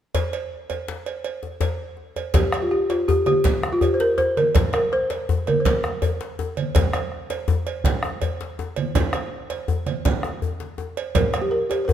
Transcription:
0.15 cowbell, djembe slap, djembe bass
0.33 cowbell
0.70 cowbell, djembe tone
0.88 djembe slap
1.06 cowbell
1.24 cowbell, djembe slap
1.43 djembe tone
1.61 cowbell, djembe slap, djembe bass
1.97 djembe slap
2.16 cowbell, djembe tone
2.34 G4, bombo low, cowbell, djembe slap, low conga, djembe bass
2.52 bombo rim, cowbell, djembe tone, high conga
2.60 F4 G4
2.71 G4, bombo rim
2.90 F4, cowbell, djembe slap
3.08 G4, djembe tone, djembe bass
3.26 G4, bombo rim, cowbell, djembe slap, high conga
3.44 bombo low, cowbell, djembe slap, low conga
3.63 bombo rim, djembe slap, high conga, djembe tone
3.73 F4
3.81 G4, cowbell, djembe slap, djembe bass
3.94 C5
4.00 A#4, djembe slap
4.18 C5, djembe tone
4.37 A#4, cowbell, high conga
4.55 bombo low, cowbell, djembe slap, low conga, djembe bass
4.73 A#4, bombo rim, cowbell, djembe tone, high conga
4.92 C5, bombo rim
5.10 cowbell, djembe slap
5.29 djembe tone, djembe bass
5.47 A#4, bombo rim, cowbell, djembe slap, high conga
5.60 C5
5.65 A#4, bombo low, cowbell, djembe slap, low conga
5.84 bombo rim, djembe slap, djembe tone, high conga
6.02 cowbell, djembe bass
6.21 djembe slap
6.39 djembe tone
6.57 cowbell, high conga
6.75 bombo low, cowbell, djembe slap, djembe bass, low conga
6.93 bombo rim, cowbell, djembe tone, high conga
7.12 bombo rim
7.30 cowbell, djembe slap
7.48 djembe tone, djembe bass
7.67 cowbell, djembe slap
7.84 bombo low, cowbell, djembe slap, low conga
8.03 bombo rim, high conga, djembe tone
8.22 cowbell, djembe slap, djembe bass
8.41 djembe slap
8.59 djembe tone
8.76 cowbell, high conga
8.95 bombo low, cowbell, djembe slap, low conga, djembe bass
9.13 bombo rim, cowbell, djembe slap, high conga, djembe tone
9.50 cowbell, djembe slap
9.68 djembe tone, djembe bass
9.86 bombo rim, cowbell, high conga
10.05 bombo rim, bombo low, cowbell, djembe slap, high conga, low conga
10.23 bombo rim, djembe slap, djembe tone
10.42 djembe bass
10.60 djembe slap, high conga
10.78 djembe tone
10.97 cowbell
11.15 A#4, bombo low, cowbell, djembe slap, low conga, djembe bass
11.33 bombo rim, cowbell, djembe tone, high conga
11.42 G4
11.51 A#4, bombo rim
11.70 G4, cowbell, djembe slap
11.85 A#4 C5, djembe tone, djembe bass

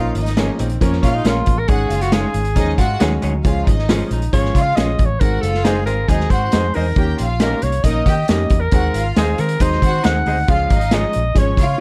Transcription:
Already playing: A#1 F3 A#3 C#4 D#4 F4 A#4 F5
0.15 G#1 D#4 D#5, closed hi-hat
0.26 snare, closed hi-hat
0.37 F3 A#3 C#4 F4 G#4 A#4 C#5, snare, closed hi-hat
0.59 A#1 D#3 C4, closed hi-hat
0.69 closed hi-hat
0.81 F2 F3 A#3 C#4 A#4 C#5, kick, closed hi-hat
0.93 snare
1.02 A#2 G#3 C#4 F4 F5, kick, closed hi-hat
1.15 D#4
1.25 A#1 F3 A#3 C#4 F4 A#4 C#5, snare, closed hi-hat
1.46 A1, kick, closed hi-hat
1.59 A#4
1.68 G#1 D#3 G#3 C#4 F#4 G#4 F#5, kick, closed hi-hat
1.90 F#1 F4 F5, closed hi-hat
2.01 F#4, snare, closed hi-hat
2.12 D#3 G#3 C#4 D#4 G#4 C#5, snare, closed hi-hat
2.34 G#1, closed hi-hat
2.45 closed hi-hat
2.55 D#2 D#3 F3 G#3 C#4 D#4 G#4 D#5, kick, closed hi-hat
2.78 G#2 G#3 F4 F#4 F#5, kick, closed hi-hat
3.00 D#2 D#3 F#3 G#3 C#4 D#4 G#4 C#5, snare, closed hi-hat
3.22 D2 G#3 D#4 G#4 C#5, closed hi-hat
3.44 C#2 F3 G#3 C#4 F4 G#4 F5, kick, closed hi-hat
3.66 G#1 D#4 D#5, kick, closed hi-hat
3.79 snare
3.89 F3 G#3 C#4 F4 G#4 C#5, snare, closed hi-hat
4.11 A#1 D#4, closed hi-hat
4.22 closed hi-hat
4.33 G#1 F3 G#3 C#4 F4 G#4 C#5, kick, closed hi-hat
4.45 snare
4.54 C#3 F4 F5, kick, closed hi-hat
4.62 F5
4.76 A#1 F3 G#3 C#4 F4 G#4 C#5 D#5, snare, closed hi-hat
4.99 A1, kick, closed hi-hat
5.05 C#5
5.20 G#1 D#3 G#3 C4 F#4 G#4 A#4 F#5, kick, closed hi-hat
5.41 F#1 F4 A4 F5, closed hi-hat
5.54 snare
5.64 D#3 G#3 C4 D#4 G#4 C5 D#5, snare, closed hi-hat
5.86 G#1 C4 G#4 A#4, closed hi-hat
6.08 D#2 D#3 F#3 G#3 C4 D#4 G#4 D#5, kick, closed hi-hat
6.20 snare
6.30 G#2 D#3 C4 F#4 C5 F#5, kick, closed hi-hat
6.52 F2 D#3 G#3 C4 D#4 G#4 C5 D#5, snare, closed hi-hat
6.74 E2 D#4 G#4 A#4 C5 D#5, open hi-hat
6.96 D#2 D#3 A#3 C#4 G4 G5, kick, closed hi-hat
7.18 A#1 F4 F5, closed hi-hat
7.40 D#3 A#3 C#4 G4 A#4 D#5, snare, closed hi-hat
7.62 C2 C#5, closed hi-hat
7.72 closed hi-hat
7.84 A#1 D#3 A#3 C#4 D#4 A#4 D#5, kick, closed hi-hat
8.06 D#3 G4 G5, kick, closed hi-hat
8.28 F2 D#3 A#3 C#4 G4 A#4 D#5, snare, closed hi-hat
8.50 E2, kick, closed hi-hat
8.60 A#4
8.71 D#2 D#3 G#3 C4 F#4 G#4 F#5, kick, closed hi-hat
8.94 G#1 F4 F5, closed hi-hat
9.16 D#2 D#3 G#3 C4 D#4 G#4 C5 D#5, snare, closed hi-hat
9.38 D#3 C4 G#4 A#4, closed hi-hat
9.49 closed hi-hat
9.59 D#2 D#3 F#3 G#3 C4 D#4 G#4 C5 D#5, kick, closed hi-hat
9.72 snare
9.82 D#3 C4 F#4 F#5, kick, closed hi-hat
10.03 D#2 D#3 G#3 C4 D#4 G#4 C5 D#5 F#5, snare, closed hi-hat
10.26 D2 D#4 G#4 C5 D#5, open hi-hat
10.48 C#2 F3 G#3 C#4 F4 G#4 F5, kick, closed hi-hat
10.70 G#1 D#4 D#5, kick, closed hi-hat
10.81 closed hi-hat
10.91 F3 G#3 C#4 F4 G#4 C#5 D#5, snare, closed hi-hat
11.13 A#1, closed hi-hat
11.35 G#1 F3 G#3 C#4 G#4 C#5, kick, closed hi-hat
11.57 C#3 F4 F5, kick, closed hi-hat

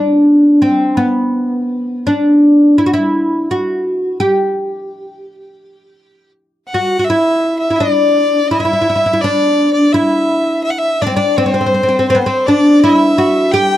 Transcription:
Already playing: D4
0.62 C4
0.97 B3
2.07 D4
2.78 E4
2.86 F#4
2.93 E4
3.51 F#4
4.20 G4
6.69 F#5
6.74 F#4
6.99 F#4
7.04 E5
7.10 E4
7.60 E5
7.70 E4
7.76 D4 D5
8.48 E4 E5
8.60 E4
8.65 E4
8.73 E4
8.82 E4
8.90 E4
8.96 E4
9.06 E4
9.13 E4
9.21 D4 D5
9.74 D5
9.92 E4 E5
10.64 E5
10.70 F#5
10.78 E5
11.01 D4 D5
11.07 C4
11.16 D4 D5
11.38 C4 C5
11.46 C4
11.54 C4
11.61 C4
11.66 C4
11.74 C4
11.83 C4
11.89 C4
11.99 C4
12.09 C4 C5
12.15 B3
12.25 C4 C5
12.46 D4 D5
12.80 E4 E5
13.18 F#4
13.51 G4 G5

